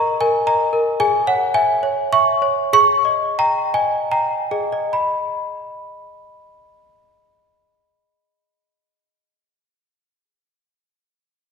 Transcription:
0, 0, Header, 1, 2, 480
1, 0, Start_track
1, 0, Key_signature, 5, "minor"
1, 0, Tempo, 528634
1, 907, Time_signature, 3, 2, 24, 8
1, 907, Tempo, 559180
1, 1867, Tempo, 604839
1, 2347, Tempo, 660066
1, 2827, Tempo, 730816
1, 3307, Tempo, 831025
1, 4267, Tempo, 851064
1, 7506, End_track
2, 0, Start_track
2, 0, Title_t, "Celesta"
2, 0, Program_c, 0, 8
2, 0, Control_c, 0, 64, 127
2, 0, Note_on_c, 0, 68, 59
2, 0, Note_on_c, 0, 70, 47
2, 0, Note_on_c, 0, 75, 42
2, 0, Note_on_c, 0, 82, 72
2, 0, Note_on_c, 0, 85, 93
2, 184, Note_off_c, 0, 82, 0
2, 187, Note_on_c, 0, 80, 76
2, 188, Note_off_c, 0, 70, 0
2, 188, Note_on_c, 0, 70, 50
2, 328, Note_off_c, 0, 75, 0
2, 424, Note_on_c, 0, 75, 38
2, 425, Note_off_c, 0, 80, 0
2, 427, Note_on_c, 0, 82, 77
2, 569, Note_off_c, 0, 70, 0
2, 662, Note_on_c, 0, 70, 49
2, 809, Note_off_c, 0, 75, 0
2, 871, Note_off_c, 0, 68, 0
2, 906, Note_off_c, 0, 70, 0
2, 907, Note_on_c, 0, 68, 68
2, 907, Note_on_c, 0, 80, 89
2, 908, Note_off_c, 0, 82, 0
2, 925, Control_c, 0, 64, 0
2, 927, Note_off_c, 0, 85, 0
2, 1043, Control_c, 0, 64, 127
2, 1140, Note_off_c, 0, 80, 0
2, 1141, Note_on_c, 0, 73, 43
2, 1143, Note_on_c, 0, 78, 75
2, 1375, Note_on_c, 0, 80, 93
2, 1377, Note_on_c, 0, 76, 48
2, 1379, Note_off_c, 0, 78, 0
2, 1523, Note_off_c, 0, 73, 0
2, 1621, Note_on_c, 0, 73, 55
2, 1767, Note_off_c, 0, 76, 0
2, 1866, Note_off_c, 0, 80, 0
2, 1873, Note_on_c, 0, 76, 54
2, 1874, Note_on_c, 0, 85, 86
2, 2008, Note_off_c, 0, 73, 0
2, 2108, Note_on_c, 0, 73, 52
2, 2251, Note_off_c, 0, 76, 0
2, 2316, Note_off_c, 0, 68, 0
2, 2347, Note_off_c, 0, 85, 0
2, 2349, Note_off_c, 0, 73, 0
2, 2353, Note_on_c, 0, 68, 66
2, 2356, Note_on_c, 0, 85, 111
2, 2364, Control_c, 0, 64, 0
2, 2517, Control_c, 0, 64, 127
2, 2585, Note_on_c, 0, 75, 46
2, 2830, Note_on_c, 0, 79, 49
2, 2831, Note_off_c, 0, 85, 0
2, 2831, Note_on_c, 0, 82, 84
2, 2968, Note_off_c, 0, 75, 0
2, 3062, Note_on_c, 0, 75, 47
2, 3063, Note_off_c, 0, 82, 0
2, 3063, Note_on_c, 0, 80, 74
2, 3208, Note_off_c, 0, 79, 0
2, 3308, Note_off_c, 0, 80, 0
2, 3308, Note_on_c, 0, 82, 71
2, 3309, Note_on_c, 0, 79, 43
2, 3444, Note_off_c, 0, 75, 0
2, 3531, Note_off_c, 0, 68, 0
2, 3538, Note_on_c, 0, 68, 51
2, 3539, Note_on_c, 0, 75, 44
2, 3654, Note_off_c, 0, 75, 0
2, 3661, Note_on_c, 0, 75, 46
2, 3685, Note_off_c, 0, 79, 0
2, 3779, Note_on_c, 0, 83, 56
2, 3782, Note_off_c, 0, 82, 0
2, 3798, Control_c, 0, 64, 0
2, 3970, Control_c, 0, 64, 127
2, 6162, Note_off_c, 0, 68, 0
2, 6281, Note_off_c, 0, 75, 0
2, 6397, Note_off_c, 0, 83, 0
2, 7506, End_track
0, 0, End_of_file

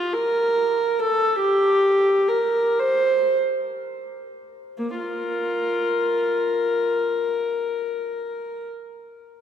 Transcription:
0, 0, Header, 1, 2, 480
1, 0, Start_track
1, 0, Tempo, 891530
1, 313, Tempo, 820793
1, 793, Time_signature, 6, 3, 24, 8
1, 793, Tempo, 894188
1, 1273, Tempo, 1060071
1, 1753, Tempo, 1418440
1, 2233, Tempo, 990099
1, 2713, Tempo, 1056338
1, 4370, End_track
2, 0, Start_track
2, 0, Title_t, "Viola"
2, 0, Program_c, 0, 41
2, 0, Note_on_c, 0, 65, 52
2, 69, Note_on_c, 0, 70, 61
2, 79, Note_off_c, 0, 65, 0
2, 549, Note_off_c, 0, 70, 0
2, 552, Note_on_c, 0, 69, 62
2, 788, Note_on_c, 0, 67, 65
2, 792, Note_off_c, 0, 69, 0
2, 1261, Note_off_c, 0, 67, 0
2, 1267, Note_on_c, 0, 70, 53
2, 1492, Note_off_c, 0, 70, 0
2, 1498, Note_on_c, 0, 72, 58
2, 1754, Note_off_c, 0, 72, 0
2, 2235, Note_on_c, 0, 58, 38
2, 2332, Note_off_c, 0, 58, 0
2, 2338, Note_on_c, 0, 65, 31
2, 2338, Note_on_c, 0, 70, 40
2, 3274, Note_off_c, 0, 65, 0
2, 4023, Note_off_c, 0, 70, 0
2, 4370, End_track
0, 0, End_of_file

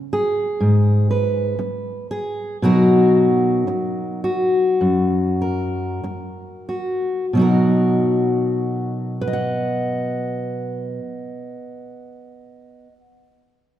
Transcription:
0, 0, Header, 1, 3, 480
1, 0, Start_track
1, 0, Key_signature, 5, "major"
1, 0, Tempo, 975610
1, 787, Tempo, 1027397
1, 1267, Time_signature, 4, 2, 24, 8
1, 1267, Tempo, 1058201
1, 1747, Tempo, 1121495
1, 2227, Tempo, 1226994
1, 2707, Tempo, 1282051
1, 3667, Tempo, 1250000
1, 5663, End_track
2, 0, Start_track
2, 0, Title_t, "Steel-string acoustic guitar"
2, 0, Program_c, 0, 25
2, 63, Note_on_c, 0, 68, 63
2, 297, Note_on_c, 0, 44, 61
2, 540, Note_off_c, 0, 68, 0
2, 544, Note_on_c, 0, 71, 54
2, 775, Note_off_c, 0, 44, 0
2, 1023, Note_off_c, 0, 71, 0
2, 1025, Note_on_c, 0, 68, 60
2, 1237, Note_off_c, 0, 68, 0
2, 1265, Note_on_c, 0, 47, 74
2, 1270, Note_on_c, 0, 54, 57
2, 1272, Note_on_c, 0, 63, 54
2, 1274, Note_on_c, 0, 66, 58
2, 1277, Note_on_c, 0, 70, 66
2, 1739, Note_off_c, 0, 47, 0
2, 1979, Note_off_c, 0, 66, 0
2, 1984, Note_on_c, 0, 66, 54
2, 2227, Note_on_c, 0, 42, 59
2, 2461, Note_off_c, 0, 70, 0
2, 2465, Note_on_c, 0, 70, 48
2, 2703, Note_off_c, 0, 42, 0
2, 2947, Note_off_c, 0, 66, 0
2, 2951, Note_on_c, 0, 66, 47
2, 3164, Note_off_c, 0, 63, 0
2, 3164, Note_off_c, 0, 66, 0
2, 3164, Note_off_c, 0, 70, 0
2, 3193, Note_on_c, 0, 47, 57
2, 3195, Note_off_c, 0, 54, 0
2, 3200, Note_on_c, 0, 54, 53
2, 3208, Note_on_c, 0, 63, 56
2, 3216, Note_on_c, 0, 66, 50
2, 3223, Note_on_c, 0, 70, 53
2, 3902, Note_off_c, 0, 63, 0
2, 3904, Note_on_c, 0, 71, 67
2, 3915, Note_off_c, 0, 70, 0
2, 3926, Note_off_c, 0, 66, 0
2, 3927, Note_on_c, 0, 75, 68
2, 3949, Note_on_c, 0, 78, 67
2, 4585, Note_off_c, 0, 47, 0
2, 4592, Note_off_c, 0, 54, 0
2, 5308, Note_off_c, 0, 71, 0
2, 5331, Note_off_c, 0, 75, 0
2, 5353, Note_off_c, 0, 78, 0
2, 5663, End_track
3, 0, Start_track
3, 0, Title_t, "Muted steel-string acoustic guitar strokes"
3, 781, Note_on_c, 9, 29, 68
3, 828, Note_off_c, 9, 29, 0
3, 1741, Note_on_c, 9, 29, 60
3, 1784, Note_off_c, 9, 29, 0
3, 2708, Note_on_c, 9, 29, 59
3, 2745, Note_off_c, 9, 29, 0
3, 5663, End_track
0, 0, End_of_file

